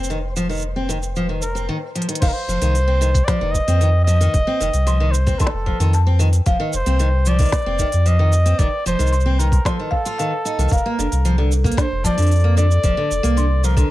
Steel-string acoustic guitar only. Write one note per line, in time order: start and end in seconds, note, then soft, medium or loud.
0.10 0.17 D#3 medium
0.36 0.48 F3 medium
0.49 0.62 D#3 medium
0.76 0.88 C4 medium
0.89 0.97 D#3 medium
1.16 1.28 F3 medium
1.29 1.42 D#3 medium
1.55 1.67 C4 medium
1.69 1.76 D#3 medium
1.95 2.07 F3 medium
2.09 2.21 D#3 medium
2.22 2.30 D#3 medium
2.49 2.61 F3 medium
2.62 2.75 D#3 medium
2.88 3.00 C4 medium
3.01 3.09 D#3 medium
3.28 3.40 F3 medium
3.41 3.54 D#3 medium
3.68 3.80 C4 medium
3.81 3.89 D#3 medium
4.07 4.20 F3 medium
4.21 4.34 D#3 medium
4.47 4.59 C4 medium
4.60 4.68 D#3 medium
4.87 4.99 F3 medium
5.00 5.13 D#3 medium
5.27 5.39 C4 medium
5.40 5.48 D#3 medium
5.66 5.79 F3 medium
5.80 5.93 D#3 medium
6.07 6.19 C4 medium
6.19 6.27 D#3 medium
6.46 6.59 F3 medium
6.60 6.73 D#3 medium
6.86 6.99 C4 medium
7.00 7.08 D#3 medium
7.26 7.38 F3 medium
7.40 7.53 D#3 medium
7.66 7.78 C4 medium
7.80 7.87 D#3 medium
8.06 8.18 F3 medium
8.19 8.32 D#3 medium
8.46 8.58 C4 medium
8.59 8.67 D#3 medium
8.86 8.98 F3 medium
8.99 9.12 D#3 medium
9.26 9.38 C4 medium
9.39 9.47 D#3 medium
9.66 9.78 F3 medium
9.79 9.92 D#3 medium
10.06 10.18 F4 medium
10.19 10.32 D#3 medium
10.45 10.57 D#4 medium
10.59 10.71 D#3 medium
10.86 10.97 A#3 medium
10.99 11.06 D3 medium
11.25 11.37 F3 medium
11.38 11.51 D3 medium
11.65 11.77 A#3 medium
11.78 11.85 D3 medium
12.05 12.16 F3 medium
12.18 12.30 D3 medium
12.44 12.56 A#3 medium
12.57 12.65 D3 medium
12.84 12.96 F3 medium
12.97 13.10 D3 medium
13.23 13.36 A#3 medium
13.37 13.45 D3 medium
13.64 13.76 F3 medium
13.77 13.89 D3 medium